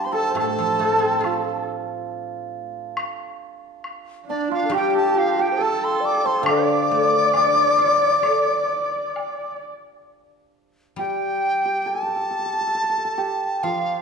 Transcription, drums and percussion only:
0.37 high woodblock
1.24 high woodblock
2.97 high woodblock
3.84 high woodblock
4.72 high woodblock
6.46 high woodblock
7.34 high woodblock, low woodblock
8.23 high woodblock
9.16 low woodblock

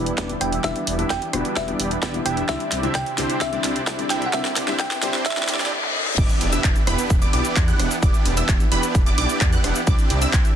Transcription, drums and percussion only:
0.06 closed hi-hat
0.18 kick, snare, closed hi-hat
0.29 closed hi-hat
0.41 cross-stick, open hi-hat
0.52 closed hi-hat
0.64 kick, snare, closed hi-hat
0.76 closed hi-hat
0.87 open hi-hat
0.99 closed hi-hat
1.10 kick, snare, closed hi-hat
1.22 closed hi-hat
1.33 cross-stick, open hi-hat
1.45 closed hi-hat
1.56 kick, snare, closed hi-hat
1.68 closed hi-hat
1.80 open hi-hat
1.91 closed hi-hat
2.03 kick, snare, closed hi-hat
2.14 closed hi-hat
2.26 cross-stick, open hi-hat
2.37 closed hi-hat
2.49 kick, snare, closed hi-hat
2.60 closed hi-hat
2.72 snare, open hi-hat
2.83 closed hi-hat
2.95 kick, snare, closed hi-hat
3.06 closed hi-hat
3.18 snare, open hi-hat
3.30 closed hi-hat
3.41 kick, snare, closed hi-hat
3.53 closed hi-hat
3.64 snare, open hi-hat
3.76 closed hi-hat
3.87 kick, snare, closed hi-hat
3.99 closed hi-hat
4.10 snare, open hi-hat
4.22 closed hi-hat
4.33 kick, snare, closed hi-hat
4.45 snare, closed hi-hat
4.56 snare, open hi-hat
4.68 snare, closed hi-hat
4.79 kick, snare, closed hi-hat
4.91 snare, closed hi-hat
5.03 snare, open hi-hat
5.14 snare, closed hi-hat
5.26 kick, snare, closed hi-hat
5.31 snare
5.37 snare, closed hi-hat
5.43 snare
5.49 snare, open hi-hat
5.54 snare
5.60 snare, closed hi-hat
5.66 snare
5.72 high tom
5.83 high tom
6.06 mid tom
6.18 kick, closed hi-hat, crash, shaker
6.30 closed hi-hat, shaker
6.41 open hi-hat
6.53 closed hi-hat, shaker
6.64 kick, clap, closed hi-hat, shaker
6.76 closed hi-hat, shaker
6.87 cross-stick, open hi-hat
6.99 closed hi-hat, shaker
7.10 kick, closed hi-hat, shaker
7.22 closed hi-hat, shaker
7.33 open hi-hat
7.45 closed hi-hat, shaker
7.56 kick, clap, closed hi-hat, shaker
7.68 closed hi-hat, shaker
7.80 cross-stick, open hi-hat
7.91 closed hi-hat, shaker
8.03 kick, closed hi-hat, shaker
8.14 closed hi-hat, shaker
8.26 open hi-hat
8.37 open hi-hat, shaker
8.49 kick, clap, closed hi-hat, shaker
8.60 closed hi-hat, shaker
8.72 open hi-hat
8.83 closed hi-hat, shaker
8.95 kick, closed hi-hat, shaker
9.06 closed hi-hat, shaker
9.18 open hi-hat
9.29 closed hi-hat, shaker
9.41 kick, clap, closed hi-hat, shaker
9.53 closed hi-hat, shaker
9.64 cross-stick, open hi-hat
9.76 closed hi-hat, shaker
9.87 kick, closed hi-hat, shaker
9.99 closed hi-hat, shaker
10.10 open hi-hat
10.22 closed hi-hat, shaker
10.33 kick, clap, closed hi-hat, shaker
10.45 closed hi-hat, shaker

